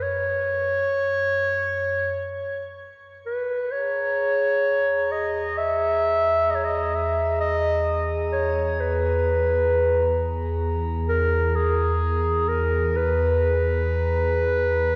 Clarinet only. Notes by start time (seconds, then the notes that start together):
0.03 C#5
3.26 B4
3.72 C#5
5.12 D#5
5.58 E5
6.50 D#5
6.55 C#5
6.65 D#5
6.95 E5
7.41 D#5
8.32 C#5
8.80 B4
11.09 A#4
11.56 G#4
12.49 A#4
12.96 B4